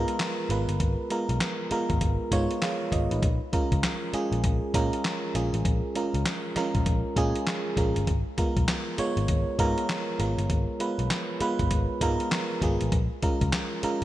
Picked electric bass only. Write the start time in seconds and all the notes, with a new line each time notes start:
0.49 G#1
0.68 G1
0.80 G#1
1.29 B1
1.71 muted picked electric bass stroke
1.90 G#1
2.01 G#1
2.31 G#2
2.92 G#1
3.11 A1
3.22 A#1
3.72 C#2
4.13 muted picked electric bass stroke
4.32 A#1
4.44 A#1
4.74 A#2
5.35 A#1
5.54 A1
5.65 A#1
6.14 C#2
6.56 muted picked electric bass stroke
6.75 A#1
6.86 A#1
7.16 A#2
7.77 A#1
7.96 G1
8.07 G#1
8.57 B1
8.98 muted picked electric bass stroke
9.17 G#1
9.29 G#1
9.59 G#2
10.19 G#1
10.38 G1
10.50 G#1
10.99 B1
11.41 muted picked electric bass stroke
11.60 G#1
11.71 G#1
12.01 G#2
12.62 G#1
12.81 A1
12.92 A#1
13.41 C#2
13.83 muted picked electric bass stroke